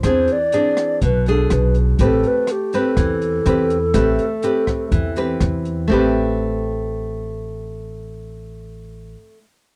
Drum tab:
HH |xxxxxxxx|xxxxxxxx|xxxxxxxx|--------|
SD |r--r--r-|--r-r---|r--r--r-|--------|
BD |o---o---|o---o---|o--oo---|--------|

HH |--------|
SD |--------|
BD |--------|